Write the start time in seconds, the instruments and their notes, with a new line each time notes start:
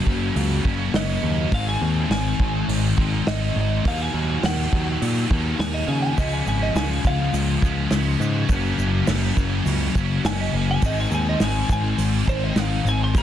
Already playing: distorted electric guitar F#2 C#3 F#3 A#3 C#4 F#4
0.06 picked electric bass F#1, kick
0.36 picked electric bass C#2, open hi-hat
0.64 picked electric bass F#1, distorted electric guitar F#2 C#3 F#3 A#3 C#4, kick
0.93 picked electric bass F#1, distorted electric guitar F#2 C#3 F#3 A#3 C#4, clean electric guitar D#5, snare, open hi-hat
1.23 picked electric bass D#2
1.51 picked electric bass G#1, distorted electric guitar G#2 D#3 G#3 C4 D#4 G#4, clean electric guitar F5, kick, open hi-hat
1.69 clean electric guitar G#5
1.81 picked electric bass D#2
2.10 picked electric bass G#1, clean electric guitar G#5, snare, open hi-hat
2.39 picked electric bass G#1, kick
2.68 picked electric bass G#1, open hi-hat
2.96 picked electric bass G#1, distorted electric guitar G#2 D#3 G#3 C4 D#4, kick
3.27 picked electric bass G#1, distorted electric guitar G#2 D#3 G#3 C4 D#4, clean electric guitar D#5, snare, open hi-hat
3.56 picked electric bass G#1
3.84 picked electric bass D#2, distorted electric guitar D#3 F#3 A#3 D#4 F#4, clean electric guitar F5, kick, open hi-hat
4.02 clean electric guitar G#5
4.14 picked electric bass D#2
4.43 picked electric bass D#2, clean electric guitar F#5, snare, open hi-hat
4.73 picked electric bass D#2, kick
5.02 picked electric bass A#2, open hi-hat
5.30 picked electric bass D#2, distorted electric guitar F#3 A#3 D#4, kick
5.34 distorted electric guitar D#3
5.59 picked electric bass D#2, distorted electric guitar D#3 F#3 A#3 D#4, clean electric guitar G#5, snare, open hi-hat
5.74 clean electric guitar D#5
5.88 picked electric bass C#3, clean electric guitar G#5
6.02 clean electric guitar G#5
6.16 picked electric bass C#2, distorted electric guitar C#3 F3 G#3 C#4 F4, clean electric guitar D#5, kick, open hi-hat, shaker
6.33 clean electric guitar G#5
6.46 picked electric bass G#1, clean electric guitar G#5, shaker
6.63 clean electric guitar D#5
6.75 picked electric bass C#2, clean electric guitar G#5, snare, open hi-hat, shaker
7.04 picked electric bass C#2, clean electric guitar F5, kick, shaker
7.33 picked electric bass C#2, open hi-hat, shaker
7.61 picked electric bass C#2, distorted electric guitar C#3 F3 G#3 C#4, kick, shaker
7.91 picked electric bass C#2, distorted electric guitar C#3 F3 G#3 C#4, snare, open hi-hat, shaker
8.20 picked electric bass G#2, shaker
8.48 picked electric bass F#1, distorted electric guitar F#2 C#3 F#3 A#3 F#4, kick, open hi-hat, shaker
8.53 distorted electric guitar C#4
8.78 picked electric bass F#1, shaker
9.07 picked electric bass F#1, snare, open hi-hat, shaker
9.37 picked electric bass F#1, kick, shaker
9.65 picked electric bass C#2, open hi-hat, shaker
9.95 picked electric bass F#1, distorted electric guitar F#2 C#3 F#3 A#3 C#4, kick, shaker
10.24 picked electric bass F#1, distorted electric guitar F#2 C#3 F#3 A#3, clean electric guitar G#5, snare, open hi-hat, shaker
10.29 distorted electric guitar C#4
10.41 clean electric guitar D#5
10.53 picked electric bass F#1, clean electric guitar G#5
10.71 clean electric guitar G#5
10.82 picked electric bass G#1, distorted electric guitar G#2 D#3 G#3 C4 D#4 G#4, clean electric guitar D#5, kick, open hi-hat, shaker
11.00 clean electric guitar G#5
11.11 picked electric bass D#2, shaker
11.15 clean electric guitar G#5
11.29 clean electric guitar D#5
11.40 picked electric bass G#1, clean electric guitar G#5, snare, open hi-hat, shaker
11.69 picked electric bass G#1, clean electric guitar G#5, kick, shaker
11.98 picked electric bass G#1, open hi-hat, shaker
12.27 picked electric bass G#1, distorted electric guitar G#2 D#3 G#3 C4 D#4, clean electric guitar C5, kick, shaker
12.44 clean electric guitar D#5
12.55 picked electric bass G#1, distorted electric guitar G#2 D#3 G#3, snare, open hi-hat, shaker
12.60 distorted electric guitar C4 D#4, clean electric guitar F5
12.85 picked electric bass G#1, shaker
12.89 clean electric guitar G#5
13.04 clean electric guitar C6
13.14 picked electric bass D#2, distorted electric guitar D#3 G3 A#3 D#4 G4, clean electric guitar A#5, kick, open hi-hat, shaker